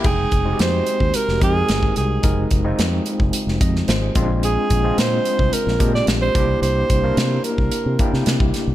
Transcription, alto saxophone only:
\new Staff \with { instrumentName = "Alto saxophone" } { \time 4/4 \key f \dorian \tempo 4 = 110 aes'4 c''4 bes'8 aes'4 aes'8~ | aes'8 r2. r8 | aes'4 c''4 bes'8. d''8 c''8. | c''4. bes'4. r4 | }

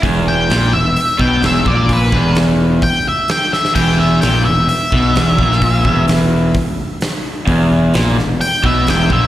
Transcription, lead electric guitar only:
\new Staff \with { instrumentName = "Lead electric guitar" } { \time 4/4 \key e \minor \tempo 4 = 129 r8 g''4 e''4 g''8 e''8 d''8 | b'4 r4 g''8 e''8 g''8 e''8 | g''8 e''8 g''8 e''8 e''2~ | e''4 r2. |
r2 g''8 e''8 g''8 e''8 | }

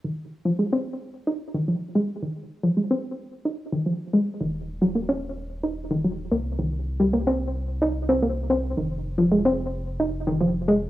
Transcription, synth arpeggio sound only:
\new Staff \with { instrumentName = "Synth arpeggio sound" } { \clef bass \time 4/4 \key f \minor \tempo 4 = 110 ees16 r8 f16 aes16 c'16 r8. ees'16 r16 ees16 f16 r16 aes16 r16 | ees16 r8 f16 aes16 c'16 r8. ees'16 r16 ees16 f16 r16 aes16 r16 | ees16 r8 ges16 bes16 des'16 r8. ees'16 r16 ees16 ges16 r16 bes16 r16 | ees16 r8 g16 bes16 c'16 r8. ees'16 r16 c'16 bes16 r16 c'16 r16 |
ees16 r8 f16 aes16 c'16 r8. ees'16 r16 ees16 f16 r16 aes16 r16 | }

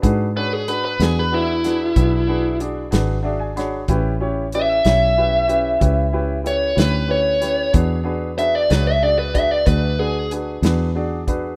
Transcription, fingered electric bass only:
\new Staff \with { instrumentName = "Fingered electric bass" } { \clef bass \time 12/8 \key e \mixolydian \tempo 4. = 62 gis,4. e,4. b,,4. gis,,4. | a,,4. b,,4. cis,4. d,4. | e,4. cis,4. d,4. e,4. | }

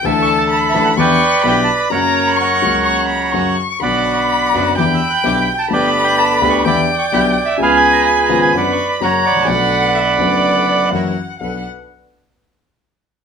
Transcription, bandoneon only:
\new Staff \with { instrumentName = "Bandoneon" } { \time 4/4 \key b \minor \tempo 4 = 127 << { \tuplet 3/2 { e''8 cis'''8 a''8 a''8 e''8 fis''8 } g''4 \tuplet 3/2 { g''8 a''8 b''8 } | \tuplet 3/2 { fis''8 ais''8 b''8 } ais''2~ ais''8 r8 | \tuplet 3/2 { b''8 d'''8 cis'''8 b''8 d'''8 fis'''8 d'''8 e'''8 fis'''8 d'''8 b''8 a''8 } | \tuplet 3/2 { g''8 b''8 g''8 a''8 b''8 cis'''8 b''8 d'''8 cis'''8 b''8 g''8 e''8 } |
\tuplet 3/2 { eis''8 gis''8 ais''8 b''8 ais''8 gis''8 fis''8 cis'''8 b''8 } ais''8 b''8~ | b''2. r4 | r1 | } \\ { a'2 <b' d''>2 | <ais' cis''>4 <cis'' fis''>2~ <cis'' fis''>8 r8 | <d'' fis''>2 <g'' b''>2 | <b' d''>2 <d'' g''>2 |
<gis' b'>2 <b' d''>4 <cis'' fis''>8 <d'' fis''>8~ | <d'' fis''>2. r4 | r1 | } >> }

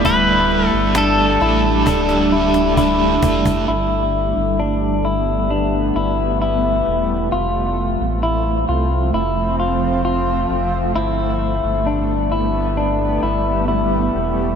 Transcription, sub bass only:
\new Staff \with { instrumentName = "Sub bass" } { \clef bass \time 4/4 \key g \mixolydian \tempo 4 = 66 d,,8. g,,8. a,,8 d,,4. f,,8 | g,,8. g,,4.~ g,,16 g,,4 e,,8 | f,,8. a,,8. c,8 f,,4. f,,8 | g,,8. g,,4.~ g,,16 g,,4 e,,8 | }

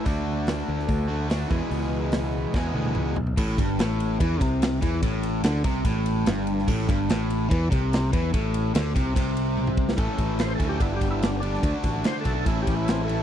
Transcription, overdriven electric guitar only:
\new Staff \with { instrumentName = "Overdriven electric guitar" } { \clef bass \time 4/4 \key d \major \tempo 4 = 145 <d a d' fis'>2~ <d a d' fis'>8 <d a d' fis'>8 <d a d' fis'>8 <e, b, e gis b gis'>8~ | <e, b, e gis b gis'>2 <e, b, e gis b gis'>8 <e, b, e gis b gis'>4 r8 | a,8 g,8 a,4 e8 c4 e8 | a,4 d8 c8 a,4 g,4 |
a,8 g,8 a,4 e8 c4 e8 | a,4 d8 c8 c2 | <a, e a cis' a'>4. <a, e a cis' a'>8 <g, d g b d' g'>4. <g, d g b d' g'>8 | <d a d' fis'>4. <d a d' fis'>8 <a, e a cis' e'>4. <a, e a cis' e'>8 | }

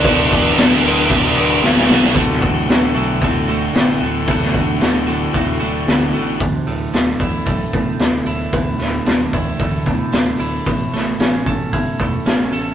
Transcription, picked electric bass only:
\new Staff \with { instrumentName = "Picked electric bass" } { \clef bass \time 4/4 \key d \major \tempo 4 = 113 d,,8 d,,8 d,,8 d,,8 d,,8 d,,8 d,,8 b,,8 | d,,8 d,,8 d,,8 b,,8 d,,4 a,,8 d,,8 | d,,8 d,,8 d,,4 d,,8 d,,8 d,,8 a,,8 | d,,8 d,,8 d,,8 d,,8 b,,8 a,,8 d,,8 d,,8 |
d,,8 d,,8 d,,8 d,,8 d,,4 d,,8 d,,8 | a,,8 a,,8 a,,8 a,,8 g,,8 e,,8 a,,8 a,,8 | }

